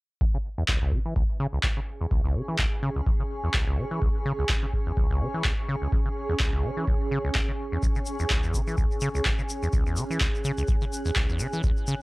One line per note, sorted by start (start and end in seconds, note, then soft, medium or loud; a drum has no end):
0.21 0.25 C#2 medium
0.21 12.02 C#4 medium
0.21 kick loud
0.34 0.38 C#3 medium
0.34 12.02 G#5 medium
0.49 12.02 G#4 medium
0.58 0.64 E2 medium
0.68 0.79 C#2 medium
0.68 kick loud
0.68 clap loud
0.82 0.94 C#2 loud
0.86 8.50 C#6 medium
0.92 1.00 C#3 medium
0.92 kick medium
1.06 1.14 E3 medium
1.16 1.23 C#2 medium
1.16 kick loud
1.40 1.47 C#3 loud
1.53 1.59 C#2 medium
1.63 1.68 C#2 medium
1.63 kick loud
1.63 clap loud
1.77 1.80 C#3 medium
2.01 2.07 E2 medium
2.11 2.22 C#2 medium
2.11 kick loud
2.25 2.37 C#2 medium
2.35 2.42 C#3 medium
2.49 2.57 E3 medium
2.59 2.66 C#2 medium
2.59 kick loud
2.59 clap loud
2.83 2.90 C#3 loud
2.96 3.02 C#2 medium
3.07 3.11 C#2 medium
3.07 kick loud
3.20 3.23 C#3 medium
3.44 3.49 E2 medium
3.54 3.65 C#2 medium
3.54 kick loud
3.54 clap loud
3.67 3.80 C#2 loud
3.78 3.85 C#3 medium
3.91 4.00 E3 medium
4.02 4.09 C#2 medium
4.02 kick loud
4.26 4.33 C#3 loud
4.39 4.45 C#2 medium
4.49 4.54 C#2 medium
4.49 kick loud
4.49 clap loud
4.63 4.66 C#3 medium
4.73 kick medium
4.87 4.92 E2 medium
4.97 5.08 C#2 medium
4.97 kick loud
5.10 5.22 C#2 loud
5.21 5.28 C#3 medium
5.34 5.43 E3 medium
5.44 5.52 C#2 medium
5.44 kick loud
5.44 clap loud
5.68 5.76 C#3 loud
5.82 5.88 C#2 medium
5.92 5.97 C#2 medium
5.92 kick loud
6.06 6.09 C#3 medium
6.29 6.35 E2 medium
6.40 6.51 C#2 medium
6.40 kick loud
6.40 clap loud
6.53 6.65 C#2 loud
6.64 6.71 C#3 medium
6.77 6.86 E3 medium
6.87 6.95 C#2 medium
6.87 kick loud
7.11 7.19 C#3 loud
7.24 7.30 C#2 medium
7.35 7.39 C#2 medium
7.35 kick loud
7.35 clap loud
7.48 7.52 C#3 medium
7.72 7.78 E2 medium
7.83 7.87 C#2 medium
7.83 kick loud
7.83 shaker medium
7.95 8.00 C#3 medium
7.95 shaker soft
8.06 shaker medium
8.19 8.26 E2 medium
8.19 shaker soft
8.30 8.41 C#2 medium
8.30 kick loud
8.30 clap loud
8.30 shaker soft
8.43 8.56 E2 medium
8.43 shaker soft
8.48 12.02 F#6 medium
8.54 8.61 C#3 medium
8.54 kick medium
8.54 shaker loud
8.67 8.76 E3 medium
8.67 shaker soft
8.78 8.85 C#2 medium
8.78 kick loud
8.78 shaker soft
8.91 shaker soft
9.01 9.09 C#3 loud
9.01 shaker medium
9.15 9.21 C#2 medium
9.15 shaker soft
9.25 9.30 C#2 medium
9.25 kick loud
9.25 clap loud
9.25 shaker soft
9.39 9.42 C#3 medium
9.39 shaker soft
9.49 shaker medium
9.63 9.69 E2 medium
9.63 shaker soft
9.73 9.84 C#2 medium
9.73 kick loud
9.73 shaker soft
9.86 9.99 E2 medium
9.86 shaker soft
9.97 10.04 C#3 medium
9.97 shaker medium
10.10 10.19 E3 medium
10.10 shaker soft
10.21 10.28 C#2 medium
10.21 kick loud
10.21 clap loud
10.21 shaker soft
10.35 shaker soft
10.45 10.52 C#3 loud
10.45 shaker medium
10.58 10.64 C#2 medium
10.58 shaker soft
10.68 10.73 C#2 medium
10.68 kick loud
10.68 shaker soft
10.81 10.85 C#3 medium
10.81 shaker soft
10.93 shaker medium
11.05 11.11 E2 medium
11.05 shaker soft
11.16 11.27 C#2 medium
11.16 kick loud
11.16 clap loud
11.16 shaker medium
11.29 11.41 E2 medium
11.29 shaker soft
11.39 11.47 C#3 medium
11.39 shaker medium
11.53 11.62 E3 medium
11.53 shaker soft
11.63 11.71 C#2 medium
11.63 kick loud
11.63 shaker soft
11.77 shaker soft
11.87 11.95 C#3 loud
11.87 shaker medium